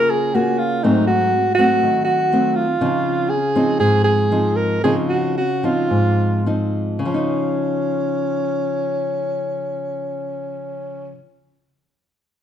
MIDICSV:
0, 0, Header, 1, 3, 480
1, 0, Start_track
1, 0, Key_signature, -5, "major"
1, 0, Tempo, 496278
1, 802, Time_signature, 4, 2, 24, 8
1, 3684, Tempo, 523104
1, 5604, Tempo, 564440
1, 6564, Tempo, 583090
1, 11004, End_track
2, 0, Start_track
2, 0, Title_t, "Alto saxophone"
2, 0, Program_c, 0, 65
2, 0, Note_on_c, 0, 70, 100
2, 100, Note_on_c, 0, 68, 86
2, 115, Note_off_c, 0, 70, 0
2, 338, Note_on_c, 0, 66, 76
2, 352, Note_off_c, 0, 68, 0
2, 564, Note_on_c, 0, 65, 73
2, 578, Note_off_c, 0, 66, 0
2, 806, Note_on_c, 0, 63, 75
2, 821, Note_off_c, 0, 65, 0
2, 1031, Note_off_c, 0, 63, 0
2, 1037, Note_on_c, 0, 66, 84
2, 1485, Note_off_c, 0, 66, 0
2, 1498, Note_on_c, 0, 66, 96
2, 1954, Note_off_c, 0, 66, 0
2, 1978, Note_on_c, 0, 66, 87
2, 2468, Note_on_c, 0, 65, 74
2, 2483, Note_off_c, 0, 66, 0
2, 3185, Note_on_c, 0, 68, 80
2, 3199, Note_off_c, 0, 65, 0
2, 3668, Note_off_c, 0, 68, 0
2, 3674, Note_on_c, 0, 68, 94
2, 3892, Note_off_c, 0, 68, 0
2, 3898, Note_on_c, 0, 68, 83
2, 4377, Note_on_c, 0, 70, 75
2, 4390, Note_off_c, 0, 68, 0
2, 4619, Note_off_c, 0, 70, 0
2, 4629, Note_on_c, 0, 68, 77
2, 4736, Note_off_c, 0, 68, 0
2, 4863, Note_on_c, 0, 66, 71
2, 5090, Note_off_c, 0, 66, 0
2, 5121, Note_on_c, 0, 66, 74
2, 5371, Note_on_c, 0, 65, 75
2, 5385, Note_off_c, 0, 66, 0
2, 6084, Note_off_c, 0, 65, 0
2, 6584, Note_on_c, 0, 61, 68
2, 9956, Note_off_c, 0, 61, 0
2, 11004, End_track
3, 0, Start_track
3, 0, Title_t, "Nylon-string guitar"
3, 0, Program_c, 1, 24
3, 0, Note_on_c, 1, 49, 64
3, 0, Note_on_c, 1, 58, 54
3, 0, Note_on_c, 1, 65, 59
3, 0, Note_on_c, 1, 68, 58
3, 287, Note_off_c, 1, 58, 0
3, 289, Note_off_c, 1, 65, 0
3, 291, Note_off_c, 1, 68, 0
3, 333, Note_on_c, 1, 58, 54
3, 338, Note_on_c, 1, 65, 55
3, 342, Note_on_c, 1, 68, 61
3, 769, Note_off_c, 1, 58, 0
3, 771, Note_off_c, 1, 65, 0
3, 773, Note_off_c, 1, 68, 0
3, 781, Note_off_c, 1, 49, 0
3, 810, Note_on_c, 1, 44, 68
3, 815, Note_on_c, 1, 54, 58
3, 815, Note_on_c, 1, 57, 51
3, 820, Note_on_c, 1, 60, 56
3, 1283, Note_off_c, 1, 57, 0
3, 1285, Note_off_c, 1, 54, 0
3, 1287, Note_off_c, 1, 60, 0
3, 1528, Note_on_c, 1, 54, 47
3, 1534, Note_on_c, 1, 57, 58
3, 1538, Note_on_c, 1, 60, 60
3, 1741, Note_off_c, 1, 44, 0
3, 1771, Note_on_c, 1, 51, 64
3, 2206, Note_off_c, 1, 54, 0
3, 2207, Note_off_c, 1, 57, 0
3, 2210, Note_off_c, 1, 60, 0
3, 2246, Note_on_c, 1, 54, 53
3, 2251, Note_on_c, 1, 57, 51
3, 2256, Note_on_c, 1, 60, 53
3, 2552, Note_off_c, 1, 54, 0
3, 2554, Note_off_c, 1, 57, 0
3, 2556, Note_off_c, 1, 60, 0
3, 2700, Note_off_c, 1, 51, 0
3, 2717, Note_on_c, 1, 49, 70
3, 2720, Note_on_c, 1, 53, 54
3, 2724, Note_on_c, 1, 60, 57
3, 2725, Note_on_c, 1, 63, 54
3, 3197, Note_off_c, 1, 60, 0
3, 3198, Note_off_c, 1, 53, 0
3, 3200, Note_off_c, 1, 63, 0
3, 3438, Note_on_c, 1, 53, 49
3, 3441, Note_on_c, 1, 60, 54
3, 3450, Note_on_c, 1, 63, 62
3, 3659, Note_off_c, 1, 49, 0
3, 3671, Note_on_c, 1, 44, 60
3, 4111, Note_off_c, 1, 53, 0
3, 4111, Note_off_c, 1, 60, 0
3, 4117, Note_off_c, 1, 63, 0
3, 4148, Note_on_c, 1, 53, 54
3, 4154, Note_on_c, 1, 60, 51
3, 4154, Note_on_c, 1, 63, 57
3, 4585, Note_off_c, 1, 53, 0
3, 4586, Note_off_c, 1, 60, 0
3, 4587, Note_off_c, 1, 63, 0
3, 4594, Note_off_c, 1, 44, 0
3, 4631, Note_on_c, 1, 60, 54
3, 4632, Note_on_c, 1, 49, 75
3, 4633, Note_on_c, 1, 53, 58
3, 4640, Note_on_c, 1, 63, 61
3, 5108, Note_off_c, 1, 60, 0
3, 5110, Note_off_c, 1, 53, 0
3, 5111, Note_off_c, 1, 63, 0
3, 5358, Note_on_c, 1, 53, 58
3, 5364, Note_on_c, 1, 60, 60
3, 5367, Note_on_c, 1, 63, 55
3, 5583, Note_off_c, 1, 49, 0
3, 5605, Note_on_c, 1, 44, 59
3, 6040, Note_off_c, 1, 53, 0
3, 6041, Note_off_c, 1, 60, 0
3, 6044, Note_off_c, 1, 63, 0
3, 6082, Note_on_c, 1, 53, 47
3, 6088, Note_on_c, 1, 60, 45
3, 6088, Note_on_c, 1, 63, 55
3, 6528, Note_off_c, 1, 53, 0
3, 6529, Note_off_c, 1, 60, 0
3, 6530, Note_off_c, 1, 63, 0
3, 6530, Note_on_c, 1, 49, 64
3, 6540, Note_off_c, 1, 44, 0
3, 6583, Note_on_c, 1, 53, 61
3, 6656, Note_on_c, 1, 63, 62
3, 9935, Note_off_c, 1, 49, 0
3, 9987, Note_off_c, 1, 53, 0
3, 10060, Note_off_c, 1, 63, 0
3, 11004, End_track
0, 0, End_of_file